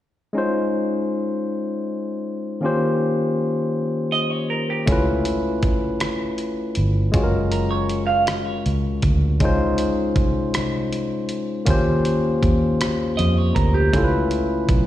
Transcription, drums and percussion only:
4.87 kick, closed hi-hat
5.25 closed hi-hat
5.63 kick, closed hi-hat
6.00 cross-stick, closed hi-hat
6.38 closed hi-hat
6.75 closed hi-hat
7.14 kick, closed hi-hat
7.52 closed hi-hat
7.89 closed hi-hat
8.27 cross-stick, closed hi-hat
8.66 closed hi-hat
9.02 kick, closed hi-hat
9.40 kick, closed hi-hat
9.78 closed hi-hat
10.16 kick, closed hi-hat
10.54 cross-stick, closed hi-hat
10.93 closed hi-hat
11.29 closed hi-hat
11.66 kick, closed hi-hat
12.05 closed hi-hat
12.43 kick, closed hi-hat
12.81 cross-stick, closed hi-hat
13.19 closed hi-hat
13.56 kick, closed hi-hat
13.93 kick, closed hi-hat
14.31 closed hi-hat
14.69 kick, closed hi-hat

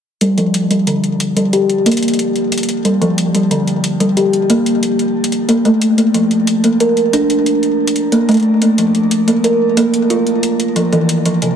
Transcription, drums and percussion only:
0.21 closed hi-hat
0.38 closed hi-hat
0.54 closed hi-hat
0.71 closed hi-hat
0.87 closed hi-hat
1.04 closed hi-hat
1.20 closed hi-hat
1.37 closed hi-hat
1.53 closed hi-hat
1.70 closed hi-hat
1.86 closed hi-hat
1.92 closed hi-hat
1.97 closed hi-hat
2.03 closed hi-hat
2.08 closed hi-hat
2.14 closed hi-hat
2.19 closed hi-hat
2.36 closed hi-hat
2.52 closed hi-hat
2.58 closed hi-hat
2.63 closed hi-hat
2.69 closed hi-hat
2.85 closed hi-hat
3.02 closed hi-hat
3.18 closed hi-hat
3.35 closed hi-hat
3.51 closed hi-hat
3.67 closed hi-hat
3.84 closed hi-hat
4.00 closed hi-hat
4.17 closed hi-hat
4.33 closed hi-hat
4.50 closed hi-hat
4.66 closed hi-hat
4.83 closed hi-hat
4.99 closed hi-hat
5.24 closed hi-hat
5.32 closed hi-hat
5.49 closed hi-hat
5.65 closed hi-hat
5.81 closed hi-hat
5.98 closed hi-hat
6.14 closed hi-hat
6.31 closed hi-hat
6.47 closed hi-hat
6.64 closed hi-hat
6.80 closed hi-hat
6.97 closed hi-hat
7.13 closed hi-hat
7.30 closed hi-hat
7.46 closed hi-hat
7.63 closed hi-hat
7.87 closed hi-hat
7.96 closed hi-hat
8.12 closed hi-hat
8.29 closed hi-hat
8.31 closed hi-hat
8.34 closed hi-hat
8.37 closed hi-hat
8.40 closed hi-hat
8.43 closed hi-hat
8.62 closed hi-hat
8.78 closed hi-hat
8.95 closed hi-hat
9.11 closed hi-hat
9.28 closed hi-hat
9.44 closed hi-hat
9.77 closed hi-hat
9.94 closed hi-hat
10.10 closed hi-hat
10.27 closed hi-hat
10.43 closed hi-hat
10.60 closed hi-hat
10.76 closed hi-hat
10.93 closed hi-hat
11.09 closed hi-hat
11.25 closed hi-hat
11.42 closed hi-hat

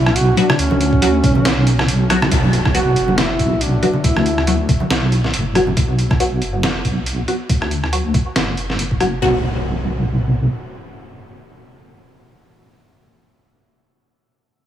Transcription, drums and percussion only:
0.06 cross-stick, high conga
0.16 closed hi-hat
0.37 closed hi-hat, high conga
0.49 cross-stick, low conga
0.59 closed hi-hat
0.71 high conga, low conga
0.81 closed hi-hat
0.93 kick
1.02 closed hi-hat, high conga
1.24 kick, closed hi-hat
1.35 high conga, low conga
1.45 snare, closed hi-hat
1.67 closed hi-hat
1.78 cross-stick, snare, high conga
1.88 closed hi-hat
2.10 cross-stick, closed hi-hat, high conga
2.22 cross-stick, low conga
2.31 kick, closed hi-hat
2.44 high conga
2.53 closed hi-hat
2.65 kick, cross-stick
2.74 closed hi-hat, high conga
2.96 closed hi-hat
3.08 high conga, low conga
3.18 snare, closed hi-hat
3.39 kick, closed hi-hat
3.52 high conga
3.61 closed hi-hat
3.83 closed hi-hat, high conga
3.93 low conga
4.04 kick, closed hi-hat
4.16 cross-stick, high conga, low conga
4.26 closed hi-hat
4.38 cross-stick
4.47 closed hi-hat, high conga
4.69 kick, closed hi-hat
4.80 high conga, low conga
4.90 snare, closed hi-hat
5.12 closed hi-hat
5.24 snare, high conga
5.34 closed hi-hat
5.55 cross-stick, closed hi-hat, high conga
5.67 low conga
5.77 kick, closed hi-hat
5.99 closed hi-hat
6.11 kick, cross-stick
6.20 closed hi-hat
6.42 closed hi-hat
6.63 snare, closed hi-hat
6.85 kick, closed hi-hat
7.06 closed hi-hat
7.28 closed hi-hat
7.49 kick, closed hi-hat
7.62 cross-stick
7.71 closed hi-hat
7.84 cross-stick
7.93 closed hi-hat
8.14 kick, closed hi-hat
8.36 snare, closed hi-hat
8.57 closed hi-hat
8.70 snare
8.79 closed hi-hat
8.91 kick
9.00 cross-stick, closed hi-hat

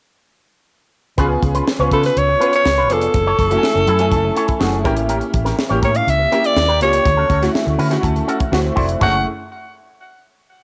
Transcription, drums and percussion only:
1.18 kick, closed hi-hat
1.43 kick, closed hi-hat
1.55 closed hi-hat
1.68 snare
1.92 kick, closed hi-hat
2.03 snare, closed hi-hat
2.17 closed hi-hat
2.42 closed hi-hat
2.53 closed hi-hat
2.66 snare
2.90 closed hi-hat
3.01 closed hi-hat
3.14 kick, closed hi-hat
3.39 kick, closed hi-hat
3.51 closed hi-hat
3.63 snare
3.87 closed hi-hat
3.99 closed hi-hat
4.12 kick, closed hi-hat
4.37 closed hi-hat
4.48 kick, closed hi-hat
4.61 snare
4.73 closed hi-hat
4.85 kick, closed hi-hat
4.97 closed hi-hat
5.09 closed hi-hat
5.21 closed hi-hat
5.34 kick, closed hi-hat
5.46 snare, closed hi-hat
5.59 snare
5.83 kick, closed hi-hat
5.95 closed hi-hat
6.08 closed hi-hat
6.32 closed hi-hat
6.44 closed hi-hat
6.57 snare
6.81 closed hi-hat
6.93 closed hi-hat
7.06 kick, closed hi-hat
7.30 kick, closed hi-hat
7.43 snare, closed hi-hat
7.55 snare
7.79 open hi-hat
7.91 snare, closed hi-hat
8.03 kick, closed hi-hat
8.16 closed hi-hat
8.29 closed hi-hat
8.40 kick, closed hi-hat
8.53 snare
8.77 kick, open hi-hat
8.89 closed hi-hat
9.01 kick, floor tom, china

